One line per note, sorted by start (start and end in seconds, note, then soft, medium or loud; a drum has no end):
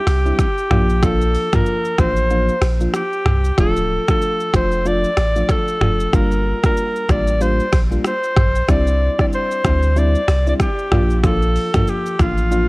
0.00 0.35 G4 loud
0.07 0.32 C2 medium
0.07 finger snap medium
0.07 cross-stick medium
0.07 open hi-hat medium
0.07 shaker medium
0.25 0.47 G3 medium
0.25 0.47 C4 medium
0.25 0.47 D4 medium
0.25 0.47 E4 medium
0.25 shaker soft
0.39 1.05 G4 loud
0.39 finger snap medium
0.39 kick medium
0.39 cross-stick medium
0.39 shaker medium
0.58 shaker soft
0.70 1.37 A#1 loud
0.70 1.00 F3 medium
0.70 1.00 A#3 medium
0.70 1.00 D4 medium
0.70 1.01 F4 loud
0.70 finger snap medium
0.70 cross-stick loud
0.70 mid tom loud
0.89 shaker medium
1.02 1.48 F3 medium
1.02 1.49 A#3 medium
1.02 1.49 D4 medium
1.02 1.49 F4 loud
1.02 1.56 A4 loud
1.02 finger snap medium
1.02 kick loud
1.02 cross-stick medium
1.02 shaker medium
1.21 shaker medium
1.35 open hi-hat soft
1.35 shaker soft
1.53 1.95 F3 medium
1.53 1.95 A#3 medium
1.53 1.95 D4 medium
1.53 1.95 F4 medium
1.53 2.01 A#4 loud
1.53 finger snap medium
1.53 kick loud
1.53 cross-stick medium
1.53 mid tom loud
1.53 shaker medium
1.66 shaker medium
1.85 shaker medium
1.98 2.50 A1 medium
1.98 2.28 F3 medium
1.98 2.28 A#3 medium
1.98 2.28 D4 medium
1.98 2.28 F4 medium
1.98 2.68 C5 loud
1.98 finger snap medium
1.98 kick medium
1.98 cross-stick loud
1.98 shaker medium
2.16 shaker medium
2.30 2.55 F3 medium
2.30 2.55 A#3 medium
2.30 2.55 D4 medium
2.30 2.55 F4 loud
2.30 shaker medium
2.49 shaker soft
2.62 2.88 A#1 loud
2.62 finger snap medium
2.62 cross-stick medium
2.62 open hi-hat medium
2.62 shaker medium
2.80 3.02 F3 medium
2.80 3.02 A#3 medium
2.80 3.02 D4 medium
2.80 3.02 F4 medium
2.80 shaker soft
2.94 3.55 G4 loud
2.94 finger snap medium
2.94 cross-stick medium
2.94 shaker medium
3.13 shaker soft
3.26 3.51 C2 medium
3.26 finger snap medium
3.26 cross-stick loud
3.26 mid tom loud
3.45 shaker medium
3.58 3.98 D1 loud
3.58 4.04 F3 medium
3.58 4.04 A3 medium
3.58 4.04 D4 medium
3.58 4.04 F4 loud
3.58 4.06 A4 loud
3.58 finger snap medium
3.58 kick loud
3.58 cross-stick medium
3.58 shaker medium
3.76 shaker medium
4.08 4.50 F3 medium
4.08 4.50 A3 medium
4.08 4.50 D4 medium
4.08 4.50 F4 medium
4.08 4.51 A4 loud
4.08 finger snap medium
4.08 kick loud
4.08 cross-stick loud
4.08 shaker medium
4.22 shaker medium
4.40 shaker medium
4.53 5.05 F1 medium
4.53 4.83 F3 medium
4.53 4.83 A3 medium
4.53 4.83 D4 medium
4.53 4.84 F4 medium
4.53 4.89 C5 loud
4.53 finger snap medium
4.53 kick medium
4.53 cross-stick loud
4.53 shaker medium
4.72 shaker medium
4.85 5.10 F3 loud
4.85 5.10 A3 medium
4.85 5.10 D4 medium
4.85 5.10 F4 loud
4.85 5.53 D5 loud
4.85 shaker medium
5.04 shaker soft
5.17 5.43 A1 medium
5.17 finger snap medium
5.17 cross-stick loud
5.17 open hi-hat medium
5.17 shaker medium
5.36 5.78 F3 medium
5.36 5.78 A3 medium
5.36 5.78 D4 medium
5.36 5.78 F4 medium
5.36 shaker medium
5.49 6.17 A4 loud
5.49 finger snap medium
5.49 kick medium
5.49 cross-stick medium
5.49 shaker medium
5.68 shaker soft
5.81 6.07 F1 medium
5.81 6.11 F3 medium
5.81 6.11 A3 medium
5.81 6.11 D4 medium
5.81 6.11 F4 medium
5.81 finger snap medium
5.81 cross-stick medium
5.81 mid tom loud
6.00 shaker medium
6.13 6.54 G1 loud
6.13 6.59 G3 medium
6.13 6.59 A#3 medium
6.13 6.59 D4 medium
6.13 6.59 F4 loud
6.13 6.65 A#4 loud
6.13 finger snap medium
6.13 kick loud
6.13 cross-stick medium
6.13 shaker medium
6.32 shaker medium
6.63 7.05 G3 medium
6.63 7.06 A#3 medium
6.63 7.06 D4 medium
6.63 7.06 F4 medium
6.63 7.12 A#4 loud
6.63 finger snap medium
6.63 kick loud
6.63 cross-stick loud
6.63 shaker medium
6.77 shaker medium
6.96 shaker medium
7.09 7.60 A1 loud
7.09 7.39 G3 medium
7.09 7.39 A#3 medium
7.09 7.39 D4 medium
7.09 7.39 F4 medium
7.09 7.44 D5 loud
7.09 finger snap medium
7.09 kick medium
7.09 cross-stick medium
7.09 shaker medium
7.27 shaker medium
7.40 7.65 G3 loud
7.40 7.65 A#3 medium
7.40 7.65 D4 medium
7.40 7.65 F4 loud
7.40 7.79 C5 loud
7.40 shaker medium
7.60 shaker soft
7.73 7.99 A#1 medium
7.73 finger snap medium
7.73 kick loud
7.73 cross-stick medium
7.73 open hi-hat medium
7.73 shaker medium
7.91 8.12 G3 medium
7.91 8.13 A#3 medium
7.91 8.13 D4 medium
7.91 8.13 F4 medium
7.91 shaker medium
8.04 8.72 C5 loud
8.04 finger snap medium
8.04 cross-stick medium
8.04 shaker medium
8.24 shaker soft
8.36 8.62 A#1 medium
8.36 finger snap medium
8.36 kick loud
8.36 cross-stick loud
8.36 mid tom loud
8.55 shaker medium
8.68 9.09 C2 loud
8.68 9.14 G3 loud
8.68 9.14 C4 medium
8.68 9.14 D4 medium
8.68 9.14 E4 loud
8.68 9.20 D5 loud
8.68 finger snap medium
8.68 kick loud
8.68 cross-stick medium
8.68 shaker medium
8.87 shaker medium
9.18 9.61 G3 medium
9.18 9.61 C4 medium
9.18 9.61 D4 medium
9.18 9.61 E4 medium
9.18 9.26 D5 loud
9.18 finger snap medium
9.18 kick loud
9.18 cross-stick loud
9.18 shaker medium
9.32 10.00 C5 loud
9.32 shaker medium
9.51 shaker medium
9.64 10.16 D2 loud
9.64 9.94 G3 medium
9.64 9.94 C4 medium
9.64 9.94 D4 medium
9.64 9.94 E4 medium
9.64 finger snap medium
9.64 kick loud
9.64 cross-stick loud
9.64 shaker medium
9.82 shaker medium
9.96 10.20 G3 medium
9.96 10.20 C4 medium
9.96 10.20 D4 medium
9.96 10.21 E4 loud
9.96 10.48 D5 loud
9.96 shaker medium
10.15 shaker soft
10.28 10.54 C2 medium
10.28 finger snap medium
10.28 cross-stick medium
10.28 open hi-hat medium
10.28 shaker medium
10.46 10.68 G3 medium
10.46 10.68 C4 medium
10.46 10.68 D4 medium
10.46 10.68 E4 medium
10.46 10.54 D5 medium
10.46 shaker soft
10.60 11.21 G4 medium
10.60 finger snap medium
10.60 kick medium
10.60 cross-stick medium
10.60 shaker medium
10.79 shaker soft
10.92 11.58 A#1 loud
10.92 11.22 F3 medium
10.92 11.22 A#3 medium
10.92 11.22 D4 medium
10.92 11.22 F4 loud
10.92 finger snap medium
10.92 cross-stick loud
10.92 mid tom loud
11.11 shaker medium
11.24 11.70 F3 medium
11.24 11.70 A#3 medium
11.24 11.70 D4 medium
11.24 11.70 F4 loud
11.24 11.91 A4 medium
11.24 finger snap medium
11.24 kick loud
11.24 cross-stick medium
11.24 shaker medium
11.42 shaker medium
11.56 open hi-hat medium
11.56 shaker soft
11.74 12.16 F3 medium
11.74 12.16 A#3 medium
11.74 12.16 D4 medium
11.74 12.16 F4 medium
11.74 finger snap medium
11.74 kick loud
11.74 cross-stick loud
11.74 mid tom loud
11.74 shaker medium
11.87 12.23 G4 medium
11.87 shaker medium
12.06 shaker medium
12.19 12.68 A1 medium
12.19 12.49 F3 medium
12.19 12.49 A#3 medium
12.19 12.49 D4 medium
12.19 12.49 F4 medium
12.19 12.68 F4 medium
12.19 finger snap medium
12.19 kick loud
12.19 cross-stick medium
12.19 shaker medium
12.38 shaker medium
12.51 12.68 F3 medium
12.51 12.68 A#3 medium
12.51 12.68 D4 medium
12.51 12.68 F4 loud
12.51 shaker medium